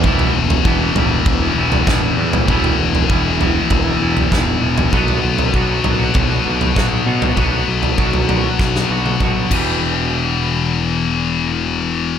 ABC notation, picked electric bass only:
X:1
M:4/4
L:1/8
Q:1/4=98
K:Em
V:1 name="Picked electric bass" clef=bass
E,,, E,,, E,,, E,,, E,,, E,,, E,,, E,, | E,,, E,,, E,,,2 E,,, E,,, E,,, E,,, | B,,, B,,, B,,, B,,, B,,, B,,, B,,, B,, | B,,, B,,, B,,,2 B,,, B,,, B,,, E,,,- |
E,,,8 |]